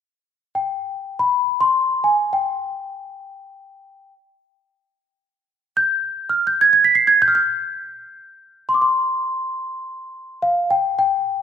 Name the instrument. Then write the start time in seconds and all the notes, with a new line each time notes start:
celesta
0.55 G5
1.19 B5
1.61 C6
2.04 G#5
2.33 G5
5.77 G6
6.30 F6
6.47 G6
6.61 G#6
6.73 G#6
6.84 B6
6.95 C7
7.07 G#6
7.22 G6
7.28 F6
7.35 G6
8.69 C6
8.74 D6
8.82 C6
10.42 F5
10.71 G5
10.99 G5